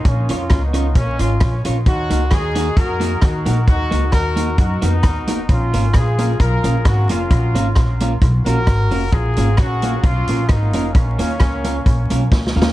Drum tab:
HH |x--x--x--x--x--x--x--x--|x--x--x--x--x--x--x--x--|x--x--x--x--x--x--x--x--|x--x--x--x--x--x--x--x--|
SD |------r-----------r-----|------r-----------r-----|------r-----------r-----|------r-----------r-----|
BD |o-----o-----o-----o-----|o-----o-----o-----o-----|o-----o-----o-----o-----|o-----o-----o-----o-----|

HH |x--x--x--x--x--x--x--o--|x--x--x--x--x--x--x--x--|x--x--x--x--x--x--------|
SD |------r-----------r-----|------r-----------r-----|------r-----------o-o-o-|
BD |o-----o-----o-----o-----|o-----o-----o-----o-----|o-----o-----o-----o-----|